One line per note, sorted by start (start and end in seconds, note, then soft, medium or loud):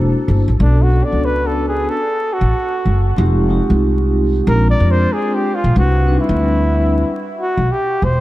0.00 0.11 E1 medium
0.00 0.40 A#3 medium
0.00 0.41 D4 medium
0.00 0.41 E4 medium
0.00 0.41 F#4 medium
0.00 0.41 C5 medium
0.28 0.43 G1 medium
0.48 0.57 A1 medium
0.59 1.00 B1 loud
0.59 0.87 B3 medium
0.59 0.87 C#4 medium
0.59 0.87 D4 medium
0.59 0.84 D4 medium
0.59 0.87 F#4 medium
0.59 0.88 A4 medium
0.83 1.06 F#4 medium
0.92 1.93 B3 medium
0.92 1.93 C#4 medium
0.92 1.94 D4 medium
0.92 1.94 F#4 medium
0.92 1.94 A4 medium
1.04 1.27 D5 medium
1.12 1.85 C#2 medium
1.25 1.48 B4 loud
1.47 1.68 A4 medium
1.68 1.91 G#4 medium
1.89 2.35 A4 loud
2.33 3.30 F#4 medium
2.41 2.51 A1 medium
2.85 3.10 F#1 medium
3.16 3.58 F1 loud
3.16 3.44 G#3 medium
3.16 3.44 C4 medium
3.16 3.45 D#4 medium
3.16 3.45 F4 medium
3.16 3.45 G4 medium
3.49 4.45 G#3 medium
3.49 4.46 C4 medium
3.49 4.47 D#4 medium
3.49 4.47 F4 medium
3.49 4.48 G4 loud
3.70 4.43 C2 medium
4.46 4.72 A#1 loud
4.46 5.52 G#3 medium
4.46 5.52 C4 medium
4.46 5.52 D4 medium
4.46 5.53 F4 medium
4.46 5.53 A#4 medium
4.46 4.68 A#4 loud
4.70 4.93 D5 loud
4.80 5.04 F2 medium
4.91 5.15 C5 loud
5.13 5.36 G#4 medium
5.35 5.57 G4 medium
5.55 5.77 F4 medium
5.64 5.73 A#1 medium
5.75 6.16 C2 loud
5.75 6.03 G3 medium
5.75 6.03 C4 medium
5.75 6.03 D4 medium
5.75 6.03 E4 medium
5.75 6.17 F#4 medium
5.75 6.04 B4 medium
6.07 7.09 G3 medium
6.07 7.09 C4 medium
6.07 7.09 D4 medium
6.07 6.16 D#4 medium
6.07 7.09 B4 medium
6.15 7.13 E4 medium
6.21 7.13 E4 medium
6.29 7.02 D2 loud
7.40 7.73 F#4 medium
7.57 7.67 B1 medium
7.72 8.06 G4 medium
8.02 8.20 E1 medium
8.02 8.20 C5 medium